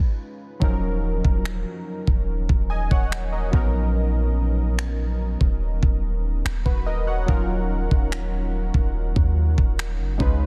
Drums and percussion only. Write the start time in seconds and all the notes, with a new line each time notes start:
0.62 kick
1.25 kick
1.45 finger snap
2.07 kick
2.49 kick
2.91 kick
3.12 finger snap
3.53 kick
4.79 finger snap
5.41 kick
5.83 kick
6.46 finger snap
6.66 kick
7.28 kick
7.91 kick
8.12 finger snap
8.74 kick
9.16 kick
9.58 kick
9.79 finger snap
10.20 kick